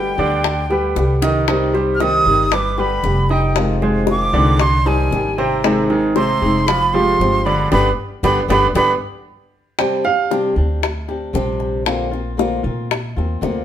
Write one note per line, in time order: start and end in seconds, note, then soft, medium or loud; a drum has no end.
0.00 0.12 G1 medium
0.00 0.18 D3 soft
0.00 0.18 G3 soft
0.00 0.17 B3 soft
0.00 0.16 G4 medium
0.00 0.10 B4 medium
0.00 1.21 G5 medium
0.18 0.92 D2 medium
0.18 0.61 D3 medium
0.18 0.43 D3 medium
0.18 0.43 G3 medium
0.18 0.44 B3 medium
0.18 0.61 D4 medium
0.18 0.43 G4 medium
0.18 0.62 D5 medium
0.44 muted nylon-string guitar stroke medium
0.44 high bongo medium
0.70 0.96 D3 medium
0.70 1.13 G3 medium
0.70 0.96 G3 medium
0.70 0.96 B3 medium
0.70 0.95 G4 medium
0.70 1.13 G4 medium
0.70 1.14 B4 medium
0.70 high bongo soft
0.96 2.19 C2 medium
0.96 1.48 D3 soft
0.96 1.48 G3 soft
0.96 1.49 B3 soft
0.96 1.49 G4 medium
0.96 high bongo medium
1.22 1.44 D#3 medium
1.22 1.44 D#4 medium
1.22 1.44 D#5 medium
1.22 low bongo medium
1.48 1.99 C3 medium
1.48 1.69 D#3 medium
1.48 1.98 D#3 medium
1.48 2.00 G3 medium
1.48 2.00 C4 medium
1.48 1.70 D#4 medium
1.48 2.00 G4 medium
1.48 1.70 D#5 medium
1.48 high bongo medium
1.73 1.95 G3 medium
1.73 1.96 G4 medium
1.73 1.96 C5 medium
1.73 high bongo soft
1.95 2.02 F6 medium
1.99 2.25 D#3 soft
1.99 2.43 D#3 medium
1.99 2.26 G3 soft
1.99 2.26 C4 medium
1.99 2.43 D#4 medium
1.99 2.25 G4 medium
1.99 2.44 D#5 medium
1.99 2.55 D#6 loud
1.99 high bongo medium
2.25 3.00 G1 medium
2.25 2.52 D#3 medium
2.25 2.52 G3 medium
2.25 2.52 C4 medium
2.25 2.51 G4 medium
2.52 2.74 G3 medium
2.52 2.74 G4 medium
2.52 2.74 B4 medium
2.52 2.81 D6 loud
2.52 muted nylon-string guitar stroke medium
2.52 high bongo medium
2.78 3.03 D3 soft
2.78 3.21 G3 medium
2.78 3.03 G3 medium
2.78 3.03 B3 medium
2.78 3.03 G4 medium
2.78 3.21 G4 medium
2.78 3.21 B4 medium
2.78 3.34 B5 medium
2.78 high bongo soft
3.03 4.27 F1 medium
3.03 3.55 D3 soft
3.03 3.55 G3 soft
3.03 3.56 B3 medium
3.03 3.56 G4 medium
3.03 high bongo soft
3.03 low bongo medium
3.29 3.73 D#4 medium
3.29 3.73 D#5 medium
3.29 3.57 G5 medium
3.29 high bongo soft
3.55 4.07 C3 medium
3.55 4.07 D#3 medium
3.55 4.07 G#3 medium
3.55 4.08 C4 medium
3.55 4.08 F4 medium
3.55 high bongo medium
3.82 4.25 G#3 medium
3.82 4.25 G#4 medium
3.82 4.25 C5 medium
3.82 high bongo soft
4.07 4.33 D#3 soft
4.07 4.33 G#3 soft
4.07 4.32 C4 medium
4.07 4.32 F4 soft
4.07 high bongo medium
4.11 4.63 D6 loud
4.33 5.07 C2 medium
4.33 4.76 D3 medium
4.33 4.59 D#3 medium
4.33 4.59 G#3 medium
4.33 4.59 C4 medium
4.33 4.76 D4 medium
4.33 4.58 F4 medium
4.33 4.77 D5 medium
4.60 4.88 C6 loud
4.60 muted nylon-string guitar stroke medium
4.60 high bongo medium
4.85 5.11 D#3 medium
4.85 5.28 G3 medium
4.85 5.11 G3 medium
4.85 5.11 D4 medium
4.85 5.28 D#4 medium
4.85 5.11 G4 medium
4.85 5.29 C5 medium
4.85 5.40 G#5 medium
4.85 high bongo soft
5.11 6.35 G#1 medium
5.11 5.62 D#3 soft
5.11 5.63 G3 soft
5.11 5.64 D4 soft
5.11 5.64 G4 medium
5.11 high bongo soft
5.11 low bongo medium
5.38 5.59 C3 medium
5.38 5.59 C4 medium
5.38 5.60 C5 medium
5.38 5.64 G5 medium
5.38 high bongo soft
5.63 5.85 C3 medium
5.63 6.14 D#3 medium
5.63 6.14 G#3 medium
5.63 6.15 C4 medium
5.63 5.86 C4 medium
5.63 6.15 D#4 medium
5.63 6.15 G#4 medium
5.63 5.86 C5 medium
5.63 high bongo medium
5.90 6.11 D#3 medium
5.90 6.11 D#4 medium
5.90 6.11 G#4 medium
5.90 high bongo soft
6.15 6.59 C3 medium
6.15 6.40 G#3 soft
6.15 6.41 C4 medium
6.15 6.59 C4 medium
6.15 6.41 D#4 medium
6.15 6.41 G#4 medium
6.15 6.59 C5 medium
6.15 6.68 C6 medium
6.15 high bongo medium
6.42 7.16 F1 medium
6.42 6.67 G#3 medium
6.42 6.67 C4 medium
6.42 6.67 D#4 medium
6.42 6.67 G#4 medium
6.67 6.89 F3 medium
6.67 6.89 F4 medium
6.67 6.90 G4 medium
6.67 6.95 B5 loud
6.67 muted nylon-string guitar stroke medium
6.67 high bongo medium
6.93 7.36 F3 medium
6.93 7.19 F3 medium
6.93 7.19 G#3 medium
6.93 7.19 C4 medium
6.93 7.37 F4 medium
6.93 7.18 G4 medium
6.93 7.37 G4 medium
6.93 7.47 C6 medium
6.93 high bongo soft
7.19 7.68 G1 medium
7.19 7.71 F3 soft
7.19 7.71 G#3 soft
7.19 7.71 C4 medium
7.19 7.72 G4 soft
7.19 high bongo soft
7.19 low bongo medium
7.45 7.67 D3 medium
7.45 7.67 D4 medium
7.45 7.67 D5 medium
7.45 7.71 B5 medium
7.45 high bongo soft
7.72 7.91 G1 medium
7.72 7.89 D3 medium
7.72 7.89 G3 medium
7.72 7.88 B3 medium
7.72 7.89 B3 medium
7.72 7.88 D4 medium
7.72 7.88 G4 medium
7.72 7.89 B5 medium
7.72 low bongo medium
8.23 8.42 G1 medium
8.23 8.40 D3 medium
8.23 8.40 G3 medium
8.23 8.40 B3 medium
8.23 8.41 D4 medium
8.23 8.40 G4 medium
8.23 8.41 B5 medium
8.23 low bongo medium
8.48 8.68 G1 medium
8.48 8.66 D3 medium
8.48 8.66 G3 medium
8.48 8.66 B3 medium
8.48 8.66 D4 medium
8.48 8.67 G4 medium
8.48 8.67 B5 medium
8.48 low bongo medium
8.75 8.94 G1 medium
8.75 8.92 D3 medium
8.75 8.92 G3 medium
8.75 8.92 B3 medium
8.75 8.92 D4 medium
8.75 8.92 G4 medium
8.75 8.93 B5 loud
8.75 low bongo medium
9.79 10.04 C3 medium
9.79 10.04 G3 medium
9.79 10.04 C4 medium
9.79 10.05 D4 medium
9.79 10.04 G4 medium
9.79 10.04 G5 medium
9.79 high bongo medium
10.04 10.30 C4 soft
10.04 10.31 D4 soft
10.04 10.30 G4 soft
10.04 10.30 F5 medium
10.04 high bongo soft
10.30 10.56 C3 medium
10.30 10.56 G3 medium
10.30 10.56 C4 medium
10.30 10.56 D4 medium
10.30 10.55 G4 medium
10.30 high bongo medium
10.56 11.30 D2 medium
10.56 10.82 C4 soft
10.56 10.82 D4 soft
10.56 10.81 G4 soft
10.82 muted nylon-string guitar stroke medium
10.82 high bongo medium
11.08 11.33 C4 soft
11.08 11.34 D4 soft
11.08 11.34 G4 soft
11.08 high bongo soft
11.33 12.58 A#1 medium
11.33 11.85 C3 medium
11.33 11.85 G3 medium
11.33 11.85 C4 medium
11.33 11.86 D4 medium
11.33 11.86 G4 medium
11.33 high bongo soft
11.33 low bongo medium
11.60 high bongo soft
11.85 12.11 D3 medium
11.85 12.11 A#3 medium
11.85 12.11 C4 medium
11.85 12.10 F4 medium
11.85 high bongo medium
12.11 12.37 A#3 soft
12.11 12.38 C4 soft
12.11 12.37 F4 soft
12.11 high bongo soft
12.37 12.63 D3 medium
12.37 12.63 A#3 medium
12.37 12.63 C4 medium
12.37 12.62 F4 medium
12.37 high bongo medium
12.63 13.13 A#2 medium
12.63 12.90 A#3 soft
12.63 12.90 C4 soft
12.63 12.89 F4 soft
12.91 muted nylon-string guitar stroke medium
12.91 high bongo medium
13.16 13.41 D#2 medium
13.16 13.41 A#3 soft
13.16 13.41 C4 soft
13.16 13.42 F4 soft
13.16 high bongo soft
13.41 13.65 D2 medium
13.41 13.65 D3 medium
13.41 13.65 A#3 medium
13.41 13.65 C4 medium
13.41 13.65 F4 medium
13.41 high bongo soft
13.41 low bongo medium